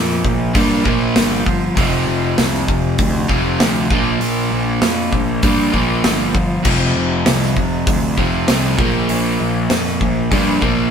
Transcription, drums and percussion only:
0.10 snare soft
0.25 kick medium
0.55 kick loud
0.55 open hi-hat medium
0.86 kick medium
1.16 snare loud
1.16 open hi-hat medium
1.46 kick medium
1.77 kick loud
1.77 open hi-hat medium
2.38 snare loud
2.38 open hi-hat medium
2.53 snare soft
2.68 kick medium
2.98 kick loud
2.98 open hi-hat medium
3.29 kick medium
3.60 snare loud
3.60 open hi-hat medium
3.91 kick loud
4.21 open hi-hat medium
4.82 snare loud
4.82 open hi-hat medium
5.13 kick medium
5.43 kick loud
5.43 open hi-hat medium
5.74 kick medium
6.04 snare loud
6.04 open hi-hat medium
6.35 kick medium
6.65 kick loud
6.65 crash loud
7.26 snare loud
7.26 open hi-hat medium
7.42 snare soft
7.57 kick medium
7.87 kick loud
7.87 open hi-hat medium
8.18 kick medium
8.48 snare loud
8.48 open hi-hat medium
8.79 kick loud
9.09 open hi-hat medium
9.70 snare loud
9.70 open hi-hat medium
9.85 snare soft
10.01 kick medium
10.32 kick loud
10.32 open hi-hat medium
10.62 kick medium

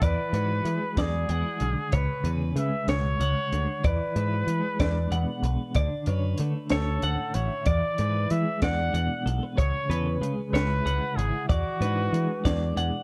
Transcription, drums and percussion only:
0.02 kick loud
0.02 closed hi-hat loud
0.34 closed hi-hat medium
0.65 closed hi-hat medium
0.97 kick medium
0.97 snare loud
0.97 closed hi-hat medium
1.29 closed hi-hat medium
1.60 closed hi-hat medium
1.92 kick loud
1.92 closed hi-hat medium
2.25 closed hi-hat medium
2.57 closed hi-hat medium
2.88 snare loud
2.88 closed hi-hat medium
3.21 closed hi-hat medium
3.53 closed hi-hat medium
3.84 kick loud
3.84 closed hi-hat medium
4.16 closed hi-hat medium
4.48 closed hi-hat medium
4.80 kick medium
4.80 snare loud
4.80 closed hi-hat medium
5.12 closed hi-hat medium
5.44 closed hi-hat medium
5.75 kick loud
5.75 closed hi-hat loud
6.06 closed hi-hat medium
6.38 closed hi-hat medium
6.70 snare loud
6.70 closed hi-hat medium
7.02 closed hi-hat medium
7.34 closed hi-hat medium
7.66 kick loud
7.66 closed hi-hat loud
7.98 closed hi-hat medium
8.30 closed hi-hat medium
8.62 kick medium
8.62 snare loud
8.62 closed hi-hat medium
8.95 closed hi-hat medium
9.27 closed hi-hat medium
9.58 kick loud
9.58 closed hi-hat medium
9.91 closed hi-hat medium
10.23 closed hi-hat medium
10.55 snare loud
10.55 closed hi-hat medium
10.87 closed hi-hat medium
11.19 closed hi-hat medium
11.50 kick loud
11.50 closed hi-hat loud
11.82 closed hi-hat medium
12.14 closed hi-hat medium
12.45 kick medium
12.45 snare loud
12.45 closed hi-hat loud
12.77 closed hi-hat medium

